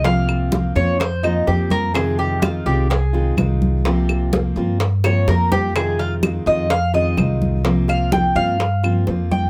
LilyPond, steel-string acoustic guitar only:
\new Staff \with { instrumentName = "Steel-string acoustic guitar" } { \time 4/4 \key f \minor \tempo 4 = 126 <c f bes c' f'>4 <f bes c' f'>8 <f bes c' f'>8 r8 <f bes c' f'>8 <f bes c' f'>4 | <c ees aes c' f'>4 <ees aes c' f'>8 <ees aes c' f'>8 r8 <ees aes c' f'>8 <ees aes c' f'>4 | <c f bes c' f'>4 <f bes c' f'>8 <f bes c' f'>8 r8 <f bes c' f'>8 <f bes c' f'>4 | <c ees aes c' f'>4 <ees aes c' f'>8 <ees aes c' f'>8 r8 <ees aes c' f'>8 <ees aes c' f'>4 |
<c f bes c' f'>4 <f bes c' f'>8 <f bes c' f'>8 r8 <f bes c' f'>8 <f bes c' f'>4 | }